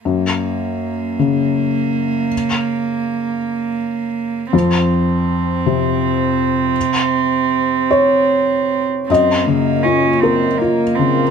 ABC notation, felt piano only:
X:1
M:6/8
L:1/8
Q:3/8=53
K:Gblyd
V:1 name="Felt piano"
z6 | z6 | z6 | z3 d3 |
e6 |]
V:2 name="Felt piano" clef=bass
G,,3 D,3- | D,6 | F,,3 C,3- | C,6 |
G,, D, F B F D, |]